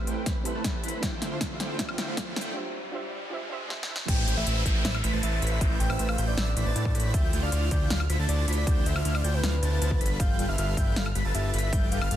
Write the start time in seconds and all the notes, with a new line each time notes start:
Already playing: A3 C4 G4 A4 B4 E5, riser
0.07 A1 A3 E4 B4 C5 G5, closed hi-hat
0.26 A1, kick, snare, closed hi-hat
0.43 A1 A3 C4 E4 G4 A4 B4 C5 E5 B5, closed hi-hat
0.55 A1 A3 E4 B4 C5 A5
0.64 A2 A3 E4, kick, snare, closed hi-hat
0.83 A1 A3 E4 B4 C5 B5, closed hi-hat
0.88 closed hi-hat
1.01 D2 D3 D4 F4 G4 C5 E5 G5, kick, snare, closed hi-hat
1.05 E5
1.22 D2 D3 A3 E4 F4 C5 G5, snare, closed hi-hat
1.31 D2 D3 A3 E4 F4 C5 F5
1.41 D2 A3 F4 C5 F5, kick, snare, closed hi-hat
1.60 D2 D3 A3 E4 F4 C5 G5, snare, closed hi-hat
1.77 D2 D3 A3 D4 E4 F4 G4 C5 E5 G5, kick, snare, closed hi-hat
1.89 high woodblock
1.98 D2 D3 A3 E4 F4 C5 G5, snare, closed hi-hat
2.08 D2 D3 A3 E4 F4 C5 F5
2.17 D2 D3 A3, kick, snare, closed hi-hat
2.36 D2 D3 A3 E4 F4 C5 G5, snare, closed hi-hat
2.41 closed hi-hat
2.54 D4 F4 G4 C5
2.58 E5
2.92 D4 F4 G4 C5
2.96 E5
3.30 D4 F4 G4 C5
3.34 E5
3.49 D4 F4 G4 C5 E5
3.68 D4 F4 G4 C5, snare
3.72 E5
3.83 snare
3.87 D4 E4 G4 C5 E5
3.96 snare
4.08 A1 A3 E4 B4 C5 G5 G6, kick, closed hi-hat, crash, downlifter
4.27 A1 A3 E4 B4 C5 G5 G6, closed hi-hat
4.37 A1 A3 E4 B4 C5 E5 E6
4.46 A1 A3 E4 B4 C5 E5 E6, closed hi-hat
4.65 A1 E5 G5 G6, kick, closed hi-hat
4.85 A1 A3 E4 B4 C5 E5 E6, snare, closed hi-hat
4.95 high woodblock
5.04 A1 A3 E4 B4 C5 B5 B6, closed hi-hat
5.13 A1 A3 E4 B4 C5 A5 A6
5.23 A1 A3 E4 B4 C5 E5 A5 A6, closed hi-hat
5.42 A1 A3 E4 B4 C5 B5 B6, closed hi-hat
5.47 closed hi-hat
5.52 E5
5.61 A1 A3 E4 G5 G6, kick, closed hi-hat
5.80 A1 A3 E4 B4 C5 G5 G6, closed hi-hat
5.90 A1 A3 E4 B4 C5 E5 E6, high woodblock
5.99 A1 A3 E4 B4 C5 E5 E6, closed hi-hat
6.09 F5, high woodblock
6.18 A1 A3 E4 B4 C5 G5 G6, closed hi-hat
6.28 D5
6.37 A1 A3 E4 B4 C5 E5 E6, snare, closed hi-hat
6.56 A1 A3 E4 B4 C5 B5 B6, closed hi-hat
6.66 A1 A3 E4 B4 C5 A5 A6
6.76 A2 A3 E4 B4 C5 A5 A6, closed hi-hat
6.85 kick
6.95 A2 A3 E4 B4 C5 B5 B6, closed hi-hat
7.00 closed hi-hat
7.14 D2 D3 A3 E4 F4 C5 E5 G5 G6, kick, closed hi-hat
7.33 D2 D3 A3 E4 F4 C5 G5 G6, closed hi-hat
7.43 D2 D3 A3 E4 F4 C5 D5 F5 F6
7.52 D2 D3 A3 E4 F4 C5 F5 F6, closed hi-hat
7.71 D2 A3 E4 F4 C5 D5 G6, kick, closed hi-hat
7.90 D2 D3 A3 E4 F4 C5 F5 F6, snare, closed hi-hat
8.00 high woodblock
8.10 D2 D3 A3 E4 F4 C5 B5 B6, closed hi-hat
8.19 D2 D3 A3 E4 F4 C5 A5 A6
8.29 D2 D3 A3 E4 F4 C5 D5 A5 A6, closed hi-hat
8.48 D2 D3 A3 E4 F4 C5 B5 B6, closed hi-hat
8.53 closed hi-hat
8.57 D5
8.67 D2 D3 A3 E4 F4 C5 G6, kick, closed hi-hat
8.86 D2 D3 A3 E4 F4 C5 E5 G5 G6, closed hi-hat
8.96 D2 D3 A3 E4 F4 C5 F5 F6, high woodblock
9.05 D2 D3 A3 E4 F4 C5 F5 F6, closed hi-hat
9.15 D5, high woodblock
9.24 D2 D3 A3 E4 F4 C5 G5 G6, closed hi-hat
9.34 B4
9.43 D2 D3 A3 E4 F4 C5 F5 F6, snare, closed hi-hat
9.62 D2 D3 A3 E4 F4 C5 A5 A6, closed hi-hat
9.81 D2 D3 A3 E4 F4 C5 A5 A6, closed hi-hat
9.91 kick
10.01 G1 G3 F4 A4 B4 B5 B6, closed hi-hat
10.06 closed hi-hat
10.20 G1 F5 G6, kick, closed hi-hat
10.39 G1 G3 F4 A4 B4 G5 G6, closed hi-hat
10.48 G1 G3 F4 A4 B4 E5 F5 F6
10.58 G1 G3 F4 A4 B4 F5 F6, closed hi-hat
10.77 G1 G3 F4 A4 B4 E5 G5 G6, kick, closed hi-hat
10.96 G1 G3 F4 A4 B4 F5 F6, snare, closed hi-hat
11.06 high woodblock
11.15 G1 G3 F4 A4 B4 B5 B6, closed hi-hat
11.25 G1 G3 F4 A4 B4 A5 A6
11.34 G1 G3 F4 A4 B4 E5 A5 A6, closed hi-hat
11.53 G1 G3 F4 A4 B4 B5 B6, closed hi-hat
11.59 closed hi-hat
11.63 E5
11.73 G1 G3 F4 A4 B4 G5 G6, kick, closed hi-hat
11.92 G1 G3 F4 A4 B4 F5 G5 G6, closed hi-hat
12.01 G1 G3 F4 A4 B4 F5 F6, high woodblock
12.11 G1 G3 F4 A4 B4 F5 F6, closed hi-hat